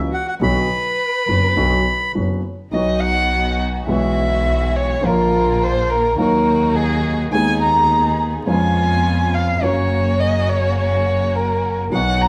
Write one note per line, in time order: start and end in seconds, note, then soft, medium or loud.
0.11 0.25 F#4 medium
0.11 0.27 F#5 medium
0.26 0.33 F#4 medium
0.26 0.35 F#5 medium
0.40 0.66 B1 medium
0.40 0.66 B2 medium
0.40 0.66 D3 medium
0.40 0.66 F#3 medium
0.40 0.67 B3 medium
0.40 0.66 F#4 medium
0.40 2.11 B4 medium
0.40 2.12 B5 loud
1.28 1.53 F#1 medium
1.28 1.53 F#1 soft
1.28 1.53 F#2 soft
1.28 1.53 D3 soft
1.28 1.53 F#3 soft
1.28 1.53 B3 soft
1.28 1.53 F#4 soft
1.56 1.81 B1 medium
1.56 1.82 B1 medium
1.56 1.82 B2 medium
1.56 1.81 D3 medium
1.56 1.81 F#3 medium
1.56 1.82 B3 medium
1.56 1.82 F#4 medium
2.14 2.40 F#1 medium
2.14 2.40 F#1 soft
2.14 2.40 F#2 soft
2.14 2.40 D3 soft
2.14 2.40 F#3 soft
2.14 2.40 B3 soft
2.14 2.40 F#4 soft
2.71 3.83 B1 medium
2.71 3.83 B2 medium
2.71 3.82 D#3 soft
2.71 3.83 F#3 soft
2.71 3.83 B3 medium
2.71 3.84 B3 soft
2.71 3.83 D#4 medium
2.71 3.83 F#4 medium
2.71 3.01 D#5 medium
2.76 3.84 F#4 medium
3.00 3.59 F#5 medium
3.87 4.98 B1 medium
3.87 4.98 B2 medium
3.87 4.97 E3 medium
3.87 4.98 G#3 soft
3.87 4.98 G#3 medium
3.87 4.98 B3 soft
3.87 4.98 E4 medium
3.87 4.98 F#4 medium
3.87 4.78 E5 medium
3.91 4.99 F#4 medium
4.76 5.07 C#5 medium
5.01 6.12 A#1 medium
5.01 6.13 A#1 medium
5.01 6.12 A#2 medium
5.01 6.11 D3 soft
5.01 6.12 F3 soft
5.01 6.13 A#3 medium
5.01 6.13 A#3 soft
5.01 6.13 D4 medium
5.01 6.13 F4 medium
5.05 6.14 F4 medium
5.05 5.64 A#4 medium
5.62 5.91 C5 medium
5.90 6.18 A#4 medium
6.16 7.27 D#2 medium
6.16 7.27 D#3 medium
6.16 7.27 F#3 medium
6.16 7.27 A#3 medium
6.16 7.27 D#4 medium
6.16 7.27 F#4 medium
6.16 7.28 F#4 medium
6.16 6.77 A#4 medium
6.75 7.19 G#4 medium
7.32 8.42 D#2 medium
7.32 8.42 D#3 medium
7.32 8.41 G#3 medium
7.32 8.41 B3 medium
7.32 8.42 B3 soft
7.32 8.41 D#4 medium
7.32 8.41 G#4 medium
7.32 8.43 G#4 medium
7.32 7.59 G#5 loud
7.61 8.14 A#5 medium
8.45 9.56 F2 medium
8.45 9.55 C#3 medium
8.45 9.56 F3 medium
8.45 9.56 G#3 soft
8.45 9.56 B3 medium
8.45 9.56 B3 soft
8.45 9.56 C#4 medium
8.45 9.56 F4 medium
8.45 9.36 G#5 medium
8.49 9.57 F4 medium
9.34 9.65 F5 medium
9.60 11.81 F#1 medium
9.60 11.81 F#2 medium
9.60 11.80 C#3 medium
9.60 11.81 F#3 medium
9.60 11.80 A#3 medium
9.60 11.81 A#3 soft
9.60 11.80 C#4 medium
9.60 11.80 F#4 medium
9.60 11.82 F#4 medium
9.60 10.21 C#5 medium
10.20 10.51 D#5 medium
10.49 10.77 C#5 medium
10.78 11.37 C#5 medium
11.35 11.78 A#4 medium
11.90 12.28 B1 medium
11.90 12.28 B2 medium
11.90 12.28 D#3 soft
11.90 12.28 F#3 soft
11.90 12.28 B3 medium
11.90 12.28 B3 soft
11.90 12.28 D#4 medium
11.90 12.28 F#4 medium
11.90 12.23 F#5 medium
11.94 12.28 F#4 medium
12.21 12.28 A#5 medium